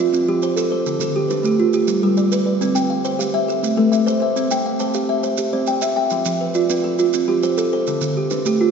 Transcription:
Already playing: A4 B4
0.00 F4
0.13 C4, maracas
0.28 F3 F4 G4
0.42 C5, maracas
0.56 A4, maracas
0.71 A4 C5
0.86 D3, maracas
1.00 D3 A4, maracas
1.16 G4
1.28 D4 B4, maracas
1.43 A3 G4, maracas
1.60 F4
1.73 G4, maracas
1.88 G3, maracas
2.02 G3 G4 A4
2.17 D5, maracas
2.32 B4, maracas
2.46 B4 D5
2.61 C4, maracas
2.75 C4 G5, maracas
2.90 F5
3.05 C5, maracas
3.19 G4 F5, maracas
3.34 E5
3.48 A4, maracas
3.63 A3, maracas
3.77 A3 A4 B4
3.92 E5, maracas
4.06 C5, maracas
4.20 C5 E5
4.36 C4, maracas
4.51 C4 G5, maracas
4.66 F5
4.79 C5 A5, maracas
4.94 G4 F5, maracas
5.09 E5
5.23 C5, maracas
5.37 G4, maracas
5.53 C4 C5 D5
5.67 G5, maracas
5.82 E5, maracas
5.96 E5 G5
6.10 F3, maracas
6.25 F3, maracas
6.41 B4
6.54 F4 D5, maracas
6.70 C4 B4, maracas
6.84 A4
6.99 F4, maracas
7.13 C4, maracas
7.28 F3 F4 G4
7.43 C5, maracas
7.57 A4, maracas
7.73 A4 C5
7.87 D3, maracas
8.01 D3, maracas
8.17 G4
8.30 D4 B4, maracas
8.45 A3 G4, maracas
8.61 F4

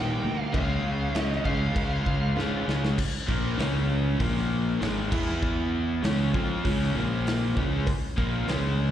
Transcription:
Already playing: A#2 D#3 G3 A#3 D#4 G5
0.23 D2 A#3
0.41 F5
0.52 C#2 C#3 G#3 C#4 F5, kick, cowbell, crash
0.84 C#2 C#3
1.14 C#2 C#4, snare, cowbell, crash
1.20 D#5
1.32 snare
1.44 C#2 C#3 G#3 C#4 F5, kick
1.75 C#2 C#4, kick, cowbell, crash
2.06 C#2 G#3, kick
2.36 G#2 C#3 G#3 C#4 F4, snare, cowbell
2.66 C#2 C#4, snare
2.85 snare
2.98 kick, crash
3.27 A#1 A#2 F3 A#3, kick
3.58 C#2 C#3 G#3 C#4, snare, open hi-hat
4.19 A#1 A#2 F3 A#3, kick, open hi-hat
4.37 snare
4.80 G#1 G#2 D#3 G#3, snare, open hi-hat
5.10 E2 E3 B3 E4, kick, crash
5.30 snare
5.43 kick
6.02 C#2 C#3 G#3 C#4, snare, open hi-hat
6.33 F2 F3 C4 F4, kick
6.64 C#2 C#3 G#3 C#4, kick, open hi-hat
6.83 snare
6.95 A#1 A#2 F3 A#3
7.27 snare, open hi-hat
7.56 C#2 C#3 G#3 C#4, kick
7.87 kick, open hi-hat, cowbell
8.17 A#1 A#2 F3 A#3, kick
8.47 C#2 C#3 G#3 C#4, snare, open hi-hat, cowbell

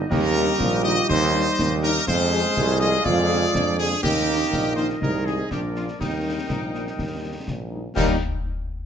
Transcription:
0.10 D#2 D#3 G3 G4 A#4 D#5, concert bass drum, snare, crash
0.35 D#3 G3 D#4
0.59 A#1 F4, concert bass drum, snare
0.84 D#3 G3 D#4 D#5, snare
0.98 snare
1.08 D#2 D#4 C5, concert bass drum
1.33 G3 D#4, snare
1.58 D#2, concert bass drum, snare
1.83 G3 D#4 A#4, snare
1.96 snare
2.06 F2 F3 G#3 C4 G#4 C5 F5, concert bass drum, snare, crash
2.31 F3 G#3 G#4
2.57 C2 G#3, concert bass drum, snare
2.80 F3 G#3 G#4 D#5, snare
2.93 snare
3.05 F2 F4 D5, concert bass drum
3.30 D3 G#3 G#4, snare
3.54 F2 D4, concert bass drum, snare
3.78 D3 G#3 G#4, snare
3.92 snare
4.01 D#2 D#3 A#3 D#4 G4 A#4 D#5, concert bass drum, snare, crash
4.27 D#3 A#3 D#4
4.51 A#1, concert bass drum, snare
4.76 D#3 A#3 D#4 C5, snare
4.90 snare
5.01 C2 C4 D#4 G#4 A#4, concert bass drum
5.25 D#3 G#3 D#4 G#4, snare
5.50 A#1 F3 D4 G4 A#4 D5, concert bass drum, snare
5.74 F3 A#3 D4 F4, snare
5.88 snare
5.98 D#2 G3 D#4 A#4 G5, concert bass drum, snare, crash
6.24 G3 A#3 D#4
6.48 A#1, concert bass drum, snare
6.73 G3 A#3 D#4, snare
6.87 snare
6.97 D#2, concert bass drum, snare
7.22 G3 A#3 D#4
7.46 A#1, concert bass drum, snare
7.71 G3 A#3 D#4
7.94 D#2 G3 A#3 D#4 A#4 G5, concert bass drum, snare, crash

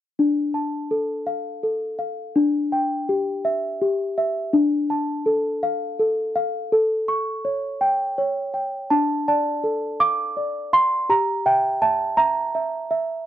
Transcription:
0.19 D4
0.54 A5
0.91 A4
1.27 F5
1.63 A4
1.99 F5
2.36 D4
2.72 G5
3.09 G4
3.45 E5
3.81 G4
4.18 E5
4.53 D4
4.90 A5
5.26 A4
5.63 F5
5.99 A4
6.36 F5
6.72 A4
7.08 C#6
7.45 C#5
7.81 G5
8.18 C#5
8.54 G5
8.90 D4 A5
9.28 D5 A5
9.64 A4
10.00 F5 D6
10.37 D5
10.73 F5 C6
11.09 G4 A#5
11.46 E5 G5
11.82 E5 A5
12.17 E5 A#5
12.55 E5
12.91 E5

